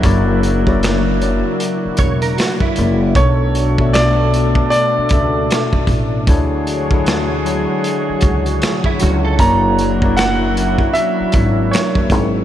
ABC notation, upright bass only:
X:1
M:4/4
L:1/16
Q:"Swing 16ths" 1/4=77
K:Dlyd
V:1 name="Upright bass" clef=bass
F,,,6- F,,, z3 E,,,2 z2 F,,,2 | B,,,6- B,,, z3 C,,2 z B,,, A,,,2 | D,,6- D,, z3 C,,2 z2 C,,2 | F,,,6- F,,, z3 G,,,2 z F,,, G,,,2 |]